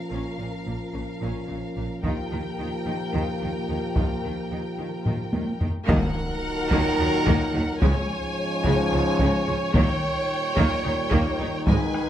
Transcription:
0.00 1.99 A#2 soft
0.00 1.99 F3 soft
0.00 2.00 C#4 soft
0.00 1.99 F4 soft
0.00 2.00 A#4 soft
0.00 2.00 F5 soft
0.11 0.20 A#1 soft
0.11 0.19 A#2 soft
0.11 0.36 C#4 soft
0.38 0.47 A#1 soft
0.38 0.46 A#2 soft
0.38 0.47 C#4 soft
0.66 0.74 A#1 soft
0.66 0.74 A#2 soft
0.66 0.74 A#3 soft
0.94 1.02 A#1 soft
0.94 1.02 A#2 soft
0.94 1.02 C#4 soft
1.21 1.30 A#1 medium
1.21 1.29 A#2 soft
1.21 1.47 C#4 soft
1.49 1.57 A#1 soft
1.49 1.57 A#2 soft
1.49 1.57 C#4 soft
1.77 1.85 A#1 soft
1.77 1.85 A#2 soft
1.77 1.85 A#3 soft
2.03 2.12 D#2 medium
2.03 5.57 A#2 medium
2.03 2.12 D#3 medium
2.03 5.57 F3 soft
2.03 5.57 A#3 medium
2.03 2.29 F4 medium
2.03 5.61 G4 medium
2.03 5.65 A#4 medium
2.03 5.65 G5 medium
2.03 taiko medium
2.31 2.40 D#2 soft
2.31 2.39 D#3 soft
2.31 2.39 F4 soft
2.58 2.67 D#2 soft
2.58 2.67 D#3 soft
2.58 2.66 D#4 soft
2.86 2.94 D#2 soft
2.86 2.95 D#3 soft
2.86 2.94 F4 soft
3.13 3.22 D#2 medium
3.13 3.22 D#3 medium
3.13 3.39 F4 medium
3.40 3.50 D#2 soft
3.40 3.50 D#3 soft
3.40 3.48 F4 soft
3.68 3.77 D#2 soft
3.68 3.77 D#3 soft
3.68 3.76 D#4 soft
3.95 4.04 D#2 soft
3.95 4.04 D#3 soft
3.95 4.21 F4 soft
3.95 taiko medium
4.23 4.32 D#2 soft
4.23 4.32 D#3 soft
4.23 4.31 F4 soft
4.50 4.59 D#2 soft
4.50 4.59 D#3 soft
4.50 4.58 D#4 soft
4.78 4.86 D#2 soft
4.78 4.86 D#3 soft
4.78 4.86 F4 soft
5.04 5.14 D#2 soft
5.04 5.14 D#3 soft
5.04 5.31 F4 soft
5.04 taiko low-mid medium
5.32 5.41 D#2 soft
5.32 5.41 D#3 soft
5.32 5.40 F4 soft
5.32 taiko high medium
5.60 5.70 D#2 soft
5.60 5.70 D#3 soft
5.60 5.68 D#4 soft
5.60 taiko low medium
5.87 5.96 D#2 loud
5.87 7.77 A#2 loud
5.87 7.77 D#3 loud
5.87 5.97 D#3 loud
5.87 6.68 D#3 loud
5.87 7.77 F#3 loud
5.87 6.14 A#3 loud
5.87 7.77 D#4 medium
5.87 7.77 A#4 loud
5.87 7.78 F#5 medium
5.87 taiko loud
5.87 impact medium
6.70 6.80 D#2 medium
6.70 6.79 D#3 loud
6.70 6.96 A#3 medium
6.70 taiko medium
6.98 7.07 D#2 medium
6.98 7.07 D#3 medium
6.98 7.06 F#4 medium
7.26 7.35 D#2 loud
7.26 7.35 D#3 medium
7.26 7.52 A#3 loud
7.26 taiko medium
7.54 7.63 D#2 medium
7.54 7.62 D#3 medium
7.54 7.62 F#4 medium
7.81 7.91 C#2 loud
7.81 9.70 G#2 medium
7.81 7.90 C#3 loud
7.81 9.70 F3 medium
7.81 8.07 G#3 loud
7.81 9.71 G#3 loud
7.81 9.71 C#4 loud
7.81 11.63 C#5 medium
7.81 9.75 G#5 medium
7.81 taiko loud
8.64 8.73 C#2 medium
8.64 8.72 C#3 loud
8.64 8.90 G#3 medium
8.64 taiko medium
8.91 9.01 C#2 medium
8.91 9.00 C#3 medium
8.91 8.99 F4 medium
9.19 9.28 C#2 loud
9.19 9.28 C#3 medium
9.19 9.44 G#3 medium
9.19 taiko medium
9.46 9.56 C#2 medium
9.46 9.55 C#3 medium
9.46 9.54 F4 medium
9.73 9.83 D#2 loud
9.73 11.62 A#2 medium
9.73 12.09 D#3 medium
9.73 9.82 D#3 medium
9.73 10.53 D#3 loud
9.73 11.63 G3 medium
9.73 10.00 A#3 medium
9.73 12.09 D#4 medium
9.73 11.63 G5 medium
9.73 taiko loud
10.57 10.66 D#2 medium
10.57 10.65 D#3 loud
10.57 10.82 A#3 loud
10.57 taiko medium
10.83 10.93 D#2 medium
10.83 10.92 D#3 medium
10.83 10.91 D#4 medium
11.11 11.20 D#2 loud
11.11 11.20 D#3 medium
11.11 11.37 A#3 loud
11.11 taiko medium
11.40 11.48 D#2 medium
11.40 11.48 D#3 medium
11.40 11.48 D#4 medium
11.66 11.75 G#1 loud
11.66 12.09 G#2 medium
11.66 11.75 G#2 loud
11.66 11.93 G#3 loud
11.66 12.09 G#3 loud
11.66 12.09 B4 loud
11.66 12.09 G#5 medium
11.66 taiko loud
11.94 taiko rim soft

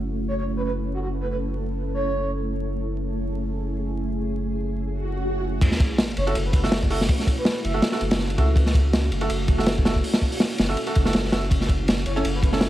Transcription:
0.00 5.60 F#1 medium
0.00 5.58 A3 medium
0.00 5.58 C#4 medium
0.00 5.58 E4 medium
0.00 2.64 A4 medium
0.28 0.34 C#5 medium
0.38 0.44 C#5 medium
0.56 0.62 B4 medium
0.65 0.71 B4 medium
0.94 0.99 F#4 medium
1.02 1.08 F#4 medium
1.20 1.27 B4 medium
1.31 1.36 B4 medium
1.94 2.31 C#5 medium
2.67 5.59 G#4 medium
4.88 swell medium
5.61 12.69 A3 medium
5.61 12.69 C#4 medium
5.61 12.69 E4 medium
5.61 11.47 F#4 medium
5.61 kick medium
5.61 crash loud
5.61 ride medium
5.61 sub drop medium
5.72 snare medium
5.80 kick loud
5.80 ride medium
5.98 snare loud
5.98 ride medium
6.17 6.34 F#1 loud
6.17 6.24 C#5 medium
6.17 ride medium
6.27 6.33 E4 loud
6.27 6.33 F#4 medium
6.27 6.33 A4 loud
6.27 6.33 C#5 medium
6.27 ride soft
6.35 7.08 F#1 medium
6.35 ride medium
6.45 6.51 B4 medium
6.53 6.60 B4 medium
6.53 kick medium
6.53 ride medium
6.63 6.75 E4 medium
6.63 6.75 F#4 medium
6.63 6.75 A4 loud
6.63 snare soft
6.72 snare loud
6.72 ride medium
6.83 kick medium
6.90 6.98 E4 medium
6.90 6.98 F#4 medium
6.90 6.98 A4 loud
6.90 open hi-hat medium
7.01 snare medium
7.09 kick loud
7.09 ride medium
7.19 snare soft
7.27 kick medium
7.27 ride medium
7.37 7.59 B4 medium
7.45 snare loud
7.45 ride medium
7.64 7.81 F#1 medium
7.64 7.93 E5 medium
7.64 ride medium
7.74 7.81 E4 medium
7.74 7.81 F#4 medium
7.74 7.81 A4 loud
7.82 snare medium
7.82 ride medium
7.92 7.99 E4 medium
7.92 7.99 F#4 medium
7.92 7.99 A4 loud
7.92 snare soft
8.01 8.36 F#1 loud
8.01 ride medium
8.11 snare loud
8.11 ride medium
8.19 snare soft
8.30 ride medium
8.38 9.10 C#2 loud
8.38 8.46 E4 medium
8.38 8.46 F#4 medium
8.38 8.46 A4 medium
8.38 kick medium
8.38 ride medium
8.56 kick loud
8.56 ride medium
8.66 snare soft
8.74 kick loud
8.74 ride medium
8.93 snare loud
8.93 ride medium
9.11 9.28 F#1 loud
9.11 ride medium
9.21 9.28 E4 loud
9.21 9.28 F#4 medium
9.21 9.28 A4 loud
9.21 ride soft
9.30 10.02 F#1 medium
9.30 ride medium
9.48 kick loud
9.48 ride medium
9.58 9.69 E4 loud
9.58 9.69 F#4 medium
9.58 9.69 A4 loud
9.58 snare soft
9.66 snare loud
9.66 ride medium
9.78 kick loud
9.85 9.93 E4 medium
9.85 9.93 F#4 medium
9.85 9.93 A4 loud
9.85 snare loud
9.85 ride medium
9.95 kick medium
10.04 open hi-hat medium
10.13 snare medium
10.13 ride medium
10.21 kick medium
10.32 open hi-hat medium
10.40 snare loud
10.40 ride medium
10.58 10.76 F#1 loud
10.58 snare loud
10.58 ride medium
10.69 10.75 E4 medium
10.69 10.75 F#4 medium
10.69 10.75 A4 loud
10.77 ride medium
10.87 10.94 E4 medium
10.87 10.94 F#4 medium
10.87 10.94 A4 loud
10.87 ride soft
10.95 11.31 F#1 medium
10.95 kick loud
10.95 ride medium
11.05 11.16 E4 medium
11.05 11.16 F#4 medium
11.05 11.16 A4 medium
11.05 snare medium
11.13 snare loud
11.13 ride loud
11.25 snare soft
11.32 12.05 F#1 loud
11.32 11.40 E4 medium
11.32 11.40 F#4 medium
11.32 11.40 A4 medium
11.32 snare loud
11.32 ride medium
11.51 12.69 A4 medium
11.51 kick loud
11.51 ride medium
11.61 snare medium
11.69 kick loud
11.69 ride medium
11.88 snare loud
11.88 ride medium
12.06 12.23 F#1 medium
12.06 12.12 C#5 medium
12.06 ride medium
12.16 12.23 C#4 loud
12.16 12.23 E4 medium
12.16 12.23 A4 loud
12.16 12.21 C#5 medium
12.16 ride soft
12.24 12.69 F#1 medium
12.24 ride medium
12.34 12.40 B4 medium
12.43 12.49 B4 medium
12.43 kick loud
12.43 ride medium
12.52 12.64 C#4 medium
12.52 12.64 E4 medium
12.52 12.64 A4 loud
12.52 snare soft
12.61 snare loud
12.61 ride medium

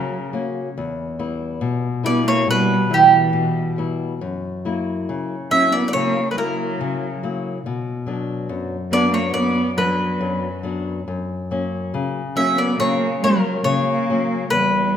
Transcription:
0.00 0.73 C#3 medium
0.00 0.30 F#3 medium
0.00 0.16 A#3 soft
0.00 0.16 C#4 soft
0.00 0.17 F#4 soft
0.00 0.30 A#4 medium
0.33 0.67 A#3 soft
0.33 0.68 C#4 soft
0.33 0.68 F#4 soft
0.78 1.59 E2 medium
1.19 1.87 G3 soft
1.19 1.87 B3 soft
1.19 1.87 E4 medium
1.61 2.44 B2 medium
2.03 2.73 G3 soft
2.03 2.73 B3 soft
2.03 2.25 B3 medium
2.03 2.73 E4 medium
2.03 2.27 D5 medium
2.26 2.46 A#3 medium
2.26 2.46 C#5 medium
2.47 3.31 B2 medium
2.47 2.88 G3 medium
2.47 2.93 B4 medium
2.90 3.74 E3 medium
2.90 3.60 G3 soft
2.90 3.60 B3 soft
2.90 3.60 E4 soft
2.94 3.75 G4 medium
3.33 4.18 B2 medium
3.78 4.13 G3 soft
3.78 4.13 B3 soft
3.78 4.13 E4 soft
4.21 5.06 F#2 medium
4.65 5.34 F#3 soft
4.65 5.34 A#3 soft
4.65 5.35 E4 soft
5.09 5.92 C#3 medium
5.51 6.20 F#3 soft
5.51 6.20 A#3 soft
5.51 5.72 C#4 medium
5.51 6.20 E4 medium
5.51 5.74 E5 medium
5.72 5.87 B3 medium
5.72 5.87 D5 medium
5.88 5.95 B3 medium
5.88 5.93 D5 medium
5.93 6.78 C#3 medium
5.93 6.29 A#3 medium
5.93 6.31 C#5 medium
6.31 6.37 G3 soft
6.31 6.38 B4 soft
6.37 7.06 F#3 soft
6.37 7.19 F#3 medium
6.37 7.06 A#3 soft
6.37 7.06 E4 soft
6.37 7.19 A#4 medium
6.81 7.63 C#3 medium
7.23 7.57 F#3 soft
7.23 7.57 A#3 soft
7.23 7.58 E4 medium
7.66 8.48 B2 medium
8.06 8.75 F#3 soft
8.06 8.75 B3 soft
8.06 8.76 D4 medium
8.49 9.32 F#2 medium
8.92 9.60 F#3 soft
8.92 9.11 B3 medium
8.92 9.60 B3 soft
8.92 9.60 D4 medium
8.92 9.13 D5 loud
9.11 9.30 A#3 medium
9.11 9.33 C#5 medium
9.30 9.72 B3 medium
9.30 9.77 D5 medium
9.35 10.18 F#2 medium
9.76 10.60 F#3 medium
9.76 10.47 F#3 soft
9.76 10.47 B3 soft
9.76 10.48 D4 soft
9.76 10.61 B4 medium
10.21 11.06 F#2 medium
10.63 10.99 F#3 soft
10.63 10.99 B3 soft
10.63 10.99 D4 medium
11.08 11.92 F#2 medium
11.51 12.20 F#3 soft
11.51 12.20 A#3 soft
11.51 12.21 C#4 soft
11.94 12.78 C#3 medium
12.36 13.06 F#3 medium
12.36 13.06 A#3 soft
12.36 12.57 C#4 medium
12.36 13.06 C#4 medium
12.36 12.60 E5 medium
12.58 12.78 B3 medium
12.58 12.79 D5 medium
12.79 13.64 C#3 medium
12.79 13.20 A#3 medium
12.79 13.23 C#5 medium
13.22 13.63 F#3 medium
13.22 13.92 F#3 soft
13.22 13.93 A#3 soft
13.22 13.93 C#4 medium
13.22 13.64 A#4 medium
13.64 14.49 C#3 medium
13.64 14.48 A#3 medium
13.64 14.47 C#5 medium
14.10 14.44 F#3 soft
14.10 14.44 A#3 soft
14.10 14.45 C#4 medium
14.50 14.97 E2 medium
14.50 14.97 G3 medium
14.50 14.97 B4 medium

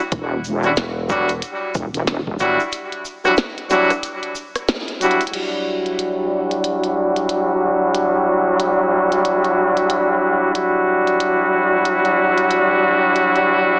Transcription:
0.12 0.75 E1 loud
0.12 kick loud
0.12 closed hi-hat medium
0.12 shaker soft
0.44 shaker medium
0.63 0.72 F#3 medium
0.63 0.72 G3 medium
0.63 0.72 D4 medium
0.63 0.72 E4 medium
0.63 0.72 F#4 loud
0.63 cross-stick soft
0.63 shaker soft
0.76 1.40 E1 medium
0.76 snare loud
0.76 closed hi-hat medium
0.76 shaker soft
1.09 1.30 F#3 medium
1.09 1.30 G3 medium
1.09 1.30 D4 medium
1.09 1.30 E4 medium
1.09 1.30 F#4 loud
1.09 kick loud
1.09 shaker medium
1.29 closed hi-hat medium
1.29 shaker soft
1.42 closed hi-hat medium
1.42 shaker soft
1.75 2.38 E1 medium
1.75 kick medium
1.75 shaker medium
1.94 closed hi-hat medium
1.94 shaker soft
2.07 snare loud
2.07 closed hi-hat medium
2.07 shaker soft
2.27 kick medium
2.39 2.57 G1 loud
2.39 2.60 F#3 medium
2.39 2.60 G3 medium
2.39 2.60 D4 medium
2.39 2.60 E4 medium
2.39 2.60 F#4 medium
2.39 shaker medium
2.60 shaker soft
2.72 closed hi-hat medium
2.72 shaker soft
2.92 closed hi-hat soft
3.05 shaker medium
3.25 3.33 F#3 medium
3.25 3.33 G3 medium
3.25 3.33 D4 medium
3.25 3.33 E4 medium
3.25 3.33 F#4 loud
3.25 cross-stick soft
3.25 shaker soft
3.37 snare loud
3.37 closed hi-hat medium
3.37 shaker soft
3.58 closed hi-hat soft
3.70 3.91 F#3 medium
3.70 3.91 G3 medium
3.70 3.91 D4 medium
3.70 3.91 E4 medium
3.70 3.91 F#4 loud
3.70 snare soft
3.70 shaker medium
3.90 cross-stick soft
3.90 closed hi-hat medium
3.90 shaker soft
4.03 closed hi-hat medium
4.03 shaker soft
4.23 closed hi-hat soft
4.35 shaker medium
4.56 cross-stick soft
4.56 closed hi-hat medium
4.56 shaker soft
4.68 snare loud
4.68 closed hi-hat medium
4.68 shaker soft
4.88 closed hi-hat soft
5.01 5.21 F#3 medium
5.01 5.21 G3 medium
5.01 5.21 D4 medium
5.01 5.21 E4 medium
5.01 5.21 F#4 medium
5.01 closed hi-hat medium
5.01 shaker medium
5.11 closed hi-hat medium
5.21 closed hi-hat medium
5.21 shaker medium
5.27 closed hi-hat medium
5.34 10.52 F#3 medium
5.34 10.52 G3 medium
5.34 10.52 D4 medium
5.34 10.52 E4 medium
5.34 10.52 F#4 medium
5.34 closed hi-hat medium
5.34 crash medium
5.86 closed hi-hat soft
5.99 closed hi-hat medium
6.51 closed hi-hat medium
6.64 closed hi-hat medium
6.84 closed hi-hat soft
7.16 closed hi-hat soft
7.29 closed hi-hat medium
7.95 closed hi-hat medium
8.60 closed hi-hat medium
9.12 closed hi-hat medium
9.25 closed hi-hat medium
9.44 closed hi-hat soft
9.77 closed hi-hat soft
9.90 closed hi-hat medium
10.55 13.79 F#3 medium
10.55 13.79 G3 medium
10.55 13.79 D4 medium
10.55 13.79 E4 medium
10.55 13.79 F#4 medium
10.55 closed hi-hat medium
11.07 closed hi-hat soft
11.20 closed hi-hat medium
11.85 closed hi-hat medium
12.05 closed hi-hat soft
12.38 closed hi-hat soft
12.51 closed hi-hat medium
13.16 closed hi-hat medium
13.36 closed hi-hat soft

